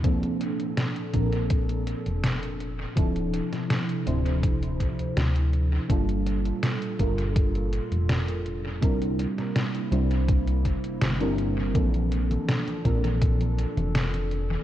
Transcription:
<<
  \new Staff \with { instrumentName = "Ambient pad" } { \time 4/4 \key bes \lydian \tempo 4 = 82 <bes, d' a'>1 | <c f e'>1 | <bes, f' a'>1 | <c bes e'>1 |
<bes, d' a'>1 | }
  \new Staff \with { instrumentName = "FM electric piano" } { \time 4/4 \key bes \lydian <f bes c' d' a'>4. <f bes c' d' bes'>16 r2 r16 | <f c' d' e' a'>4. <f c' d' e' c''>16 r2 r16 | <g bes d' f' a'>4. <g bes d' f' bes'>16 r2 r16 | <g c' d' e' bes'>4. <g c' d' e' c''>16 r4. <g c' d' e' bes'>8. |
<f bes c' d' a'>4. <f bes c' d' bes'>16 r2 r16 | }
  \new Staff \with { instrumentName = "Analog synth bass" } { \clef bass \time 4/4 \key bes \lydian r4. bes,,4 r16 f,,4 r16 | d,,8 r4 d,,4 a,,16 d,16 d,8. r16 | g,,8. r8. g,,4 r16 f,,4~ f,,16 | c,8 r4 c,4 g,,16 g,,16 g,,4 |
bes,,8. r8. bes,,4 r16 f,,4 r16 | }
  \new DrumStaff \with { instrumentName = "Drums" } \drummode { \time 4/4 <hh bd>16 hh16 hh16 hh16 <hh sn>16 hh16 <hh bd>16 hh16 <hh bd>16 hh16 hh16 hh16 <hh sn>16 hh16 hh8 | <hh bd>16 hh16 hh16 <hh sn>16 <hh sn>16 hh16 hh16 hh16 <hh bd>16 hh16 <hh bd>16 hh16 <hh sn>16 hh16 hh8 | <hh bd>16 hh16 hh16 hh16 <hh sn>16 hh16 <hh bd>16 hh16 <hh bd>16 hh16 hh16 hh16 <hh sn>16 hh16 hh8 | <hh bd>16 hh16 hh16 <hh sn>16 <hh sn>16 hh16 hh16 hh16 <hh bd>16 hh16 <hh bd>16 hh16 <hh sn>16 hh16 hh8 |
<cgho hh bd>16 <cgho hh>16 hh16 <cgho hh>16 <cgho hh sn>16 <cgho hh>16 <hh bd>16 <cgho hh>16 <cgho hh bd>16 <cgho hh>16 hh16 <cgho hh>16 <cgho hh sn>16 <cgho hh>16 hh16 cgho16 | }
>>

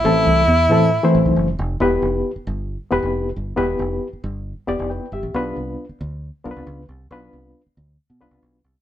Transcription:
<<
  \new Staff \with { instrumentName = "Reed electric piano" } { \time 4/4 \key e \phrygian \tempo 4 = 136 << { r1 | r1 | r2. <b' g''>8 <g' e''>8~ | <g' e''>8 r2. r8 |
r1 | } \\ { <e a c' e' a'>8. r8. <e a c' e' a'>8 r16 <e a c' e' c''>4 r8. | <b e' g' b'>4 r4. <b e' g' b'>8. r8. | <b e' g' b'>4 r4. <b e' g' d''>8. r8. | <b d' f' b'>4 r4. <b d' f' bes' b'>8. r8. |
<b d' f' b'>4 r4. <b d' f' b'>8. r8. | } >> }
  \new Staff \with { instrumentName = "Tenor saxophone" } { \time 4/4 \key e \phrygian e'2.~ e'8 r8 | r1 | r1 | r1 |
r1 | }
  \new Staff \with { instrumentName = "Fingered electric bass" } { \clef bass \time 4/4 \key e \phrygian a,,8 c,8 e,8 a,8. r16 a,,16 b,,16 fis,,8 f,,8 | e,,8 f,,8 r8 g,,8. r16 e,,16 f,,8. g,,8 | e,,8 f,,8 r8 g,,8. r16 e,,16 f,,8 r16 g,,16 a,,16 | b,,8 c,8 r8 d,8. r16 b,,16 c,16 cis,8 c,8 |
b,,8 c,8 r8 d,8 r16 b,16 b,,16 c,16 b,,8 c,16 r16 | }
>>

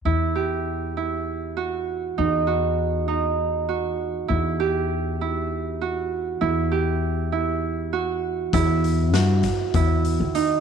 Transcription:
<<
  \new Staff \with { instrumentName = "Harp" } { \time 7/8 \key e \minor \tempo 4 = 99 e'8 g'4 e'4 fis'4 | dis'8 fis'4 dis'4 fis'4 | e'8 g'4 e'4 fis'4 | e'8 g'4 e'4 fis'4 |
e'4 fis'4 e'4 dis'8 | }
  \new Staff \with { instrumentName = "Upright bass" } { \clef bass \time 7/8 \key e \minor e,2.~ e,8 | e,2.~ e,8 | e,2.~ e,8 | e,2.~ e,8 |
e,4 g,8 r8 e,8. dis8. | }
  \new DrumStaff \with { instrumentName = "Drums" } \drummode { \time 7/8 r4 r4 r4. | r4 r4 r4. | r4 r4 r4. | r4 r4 r4. |
<hh bd>8 hh8 <hh sn>8 <hh bd sn>8 <hh bd>8 hh8 hh8 | }
>>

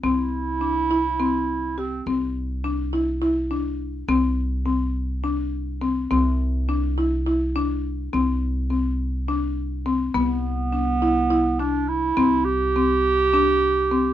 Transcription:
<<
  \new Staff \with { instrumentName = "Clarinet" } { \time 7/8 \key c \major \tempo 4 = 104 e'2. c'8 | r2. r8 | r2. r8 | r2. r8 |
r2. r8 | b2~ b8 d'8 e'8~ | e'8 g'2. | }
  \new Staff \with { instrumentName = "Marimba" } { \time 7/8 \key c \major c'4 d'8 e'8 c'4 g'8 | c'4 d'8 e'8 e'8 d'4 | c'4 c'4 d'4 c'8 | c'4 d'8 e'8 e'8 d'4 |
c'4 c'4 d'4 c'8 | b4 d'8 e'8 e'8 d'4 | c'4 c'4 d'4 c'8 | }
  \new Staff \with { instrumentName = "Upright bass" } { \clef bass \time 7/8 \key c \major c,2.~ c,8 | c,2.~ c,8 | c,2.~ c,8 | c,2.~ c,8 |
c,2.~ c,8 | c,2.~ c,8 | c,2.~ c,8 | }
>>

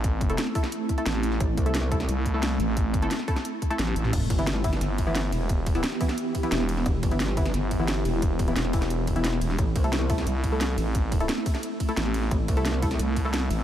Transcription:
<<
  \new Staff \with { instrumentName = "Synth stab" } { \time 4/4 \key a \dorian \tempo 4 = 176 <a e' a'>8. <a e' a'>16 r8 <a e' a'>16 r4 <a e' a'>4~ <a e' a'>16~ | <a e' a'>8. <a e' a'>16 r8 <a e' a'>16 r4 <a e' a'>4~ <a e' a'>16~ | <a e' a'>8. <a e' a'>16 r8 <a e' a'>16 r4 <a e' a'>16 r4 | r8. <e b e'>16 r8 <e b e'>16 r4 <e b e'>4~ <e b e'>16~ |
<e b e'>8. <e b e'>16 r8 <e b e'>16 r4 <e b e'>4~ <e b e'>16~ | <e b e'>8. <e b e'>16 r8 <e b e'>16 r4 <e b e'>4~ <e b e'>16~ | <e b e'>8. <e b e'>16 r8 <e b e'>16 r4 <e b e'>4~ <e b e'>16 | r8. <a e' a'>16 r8 <a e' a'>16 r4 <a e' a'>4~ <a e' a'>16~ |
<a e' a'>8. <a e' a'>16 r4. r16 <a e' a'>4~ <a e' a'>16~ | <a e' a'>8. <a e' a'>16 r8 <a e' a'>16 r4 <a e' a'>4~ <a e' a'>16 | }
  \new Staff \with { instrumentName = "Synth drone" } { \time 4/4 \key a \dorian <a c' e'>1~ | <a c' e'>1~ | <a c' e'>1 | <e b e' g'>1~ |
<e b e' g'>1~ | <e b e' g'>1~ | <e b e' g'>1 | <a c'>1~ |
<a c'>1~ | <a c'>1 | }
  \new Staff \with { instrumentName = "FM bass" } { \clef bass \time 4/4 \key a \dorian a,,4 r2 a,,4 | r2 c,4. a,,8~ | a,,4 r2 a,,8 a,,8 | r2 g,,4. e,,8~ |
e,,4 r2 e,,4 | r2 g,,4. e,,8~ | e,,4 e,,2~ e,,8 e,,8 | r2 c,4. a,,8~ |
a,,4 r2 a,,4 | r2 c,4. a,,8 | }
  \new Staff \with { instrumentName = "Wobble bass" } { \clef bass \time 4/4 \key a \dorian r1 | a,,8 c,4. r2 | r1 | e,,8 g,,4. r2 |
r1 | e,,8 g,,4. r2 | r1 | a,,8 c,4. r2 |
r1 | a,,8 c,4. r2 | }
  \new DrumStaff \with { instrumentName = "Drums" } \drummode { \time 4/4 <hh bd>8 <hh bd>16 hh16 <hh sn>16 sn16 <hho bd>16 <hh sn>16 hh8 <hh bd>16 hh16 <hh sn>16 sn16 hh16 sn16 | <hh bd>8 <hh bd>16 hh16 <hh sn>16 sn16 <hh bd>16 <hh sn>16 <hh sn>8 <hh bd>8 <hh sn>8 <hh sn>8 | <hh bd>8 <hh bd>16 hh16 <hh sn>16 sn16 <hho bd>16 <hh sn>16 hh8 <hh bd>16 hh16 <hh sn tommh>16 <sn tommh>16 hh16 <sn toml>16 | <cymc hh bd>8 <hh bd cymr>16 hh16 <hh sn>16 sn16 <hh bd cymr>16 <hh sn>16 <hh sn>8 <hh bd cymr>8 <hh sn>8 <hh cymr sn>8 |
<hh bd>8 <hh bd cymr>16 hh16 <hh sn>16 sn16 <hho bd cymr>16 <hh sn>16 hh8 <hh bd cymr>16 hh16 <hh sn>16 sn16 <hh cymr>16 sn16 | <hh bd>8 <hh bd cymr>16 hh16 <hh sn>16 sn16 <hh bd cymr>16 <hh sn>16 <hh sn>8 <hh bd cymr>8 <hh sn>8 <hh cymr sn>8 | <hh bd>8 <hh bd cymr>16 hh16 <hh sn>16 sn16 <hho bd cymr>16 <hh sn>16 hh8 <hh bd cymr>16 hh16 <hh sn>16 sn16 <hh cymr>16 sn16 | <hh bd>8 <hh bd cymr>16 hh16 <hh sn>16 sn16 <hh bd cymr>16 <hh sn>16 <hh sn>8 <hh bd cymr>8 <hh sn>8 <hh cymr sn>8 |
<hh bd>8 <hh bd cymr>16 hh16 <hh sn>16 sn16 <hho bd cymr>16 <hh sn>16 hh8 <hh bd cymr>16 hh16 <hh sn>16 sn16 <hh cymr>16 sn16 | <hh bd>8 <hh bd cymr>16 hh16 <hh sn>16 sn16 <hh bd cymr>16 <hh sn>16 <hh sn>8 <hh bd cymr>8 <hh sn>8 <hh cymr sn>8 | }
>>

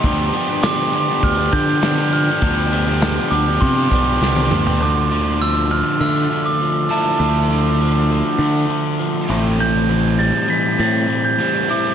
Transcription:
<<
  \new Staff \with { instrumentName = "Glockenspiel" } { \time 4/4 \key d \dorian \tempo 4 = 100 c'''4 d'''4 f'''8 g'''4 f'''8~ | f'''4 r8 d'''8 c'''4 r4 | d'''4 e'''8 f'''8 e'''8. d'''8. a''8~ | a''2.~ a''8 r8 |
g'''4 a'''8 b'''8 a'''8. g'''8. d'''8 | }
  \new Staff \with { instrumentName = "Overdriven electric guitar" } { \time 4/4 \key d \dorian <d f b d' g'>8 <f b d' g'>16 <b d' g'>16 <d f b d' g'>16 <b d' g'>8 <b d' g'>8 <b d' g'>16 <f b d' g'>8 <d f b d' g'>16 <b d' g'>8 <b d' g'>16 | <d f b d' g'>8 <f b d' g'>16 <b d' g'>16 <d f b d' g'>16 <b d' g'>8 <b d' g'>8 <b d' g'>16 <f b d' g'>8 <d f b d' g'>16 <b d' g'>8 <b d' g'>16 | <d a d' f'>2.~ <d a d' f'>8 <d a d' f'>8 | <d a d'>2.~ <d a d'>8 <a, e a c' e'>8~ |
<a, e a c' e'>2. <a, e a c' e'>8 <a, e a c' e'>8 | }
  \new Staff \with { instrumentName = "Overdriven electric guitar" } { \time 4/4 \key d \dorian <d f b d' g'>8 <f b d' g'>16 <b d' g'>16 <d f b d' g'>8 <f b d' g'>8. <b d' g'>16 <f b d' g'>16 <b d' g'>16 <d f b d' g'>8 <f b d' g'>16 <b d' g'>16 | <d f b d' g'>8 <f b d' g'>16 <b d' g'>16 <d f b d' g'>8 <f b d' g'>8. <b d' g'>16 <f b d' g'>16 <b d' g'>16 <d f b d' g'>8 <f b d' g'>16 <b d' g'>16 | d8 d8 f8 d8 a8 d8 f8 e'8 | d8 d8 f8 d8 a8 d8 f8 a,8 |
a,8 e8 g8 e8 c'8 e8 g8 e'8 | }
  \new Staff \with { instrumentName = "Picked electric bass" } { \clef bass \time 4/4 \key d \dorian d,8 r4. d,8 d4. | d,4. d,8 c8 b,,8 c,8 d,8 | d,2 d8 r4. | d,2 d8 r4 a,,8~ |
a,,4. r8 a,8 r4. | }
  \new DrumStaff \with { instrumentName = "Drums" } \drummode { \time 4/4 <hho bd>8 hho8 <hho sn>8 hho8 <hho bd>8 <hho bd>8 <hho sn>16 sn16 hho8 | <hho bd>8 hho8 <hho sn>8 hho8 <hho bd>8 <hho bd>8 sn16 tommh16 toml16 tomfh16 | r4 r4 r4 r4 | r4 r4 r4 r4 |
r4 r4 r4 r4 | }
>>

